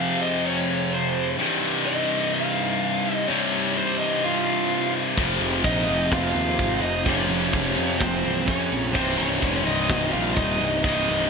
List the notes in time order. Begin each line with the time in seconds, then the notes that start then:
Already playing: F2 C3 F3 G4 G#4 F5
0.21 D#5
0.46 C#5
0.94 C5
1.38 C2 G2 C3 G3 D#4
1.86 D#5
2.34 F5
3.06 D#5
3.27 C2 G2 C3 C#5
3.77 C5
3.99 D#5
4.25 F4 F5
5.16 F1 F2 C3 F3 G4 G#4, kick, crash
5.40 F1, ride
5.64 A#1 D#4 D#5, kick, ride
5.88 F1, ride
6.11 F1 F4 F5, kick, snare, ride
6.35 D#2, ride
6.59 G#1, kick, ride
6.81 F1 D#4 D#5, ride
7.04 F1 F2 C3 C#4 C#5, kick, ride
7.09 F3
7.29 F1, ride
7.53 F1, kick, ride
7.78 F2, ride
7.98 F1 C4 C5, kick, snare, ride
8.24 C1, ride
8.45 F2 C#4 C#5, kick, ride
8.72 A#1, ride
8.93 C1 C2 G2 D#3 G3 C4 D#4 C5, kick, crash
8.97 C3
9.16 C1 C#4 C#5, ride
9.42 F1, kick, ride
9.65 C1 D#4 D#5, ride
9.90 C1, kick, snare, ride
10.12 A#1 F4 F5, ride
10.35 D#1 D#4 D#5, kick, ride
10.61 C1, ride
10.83 C1 C2 G2 C3 D#4 D#5, kick, ride
11.08 C1, ride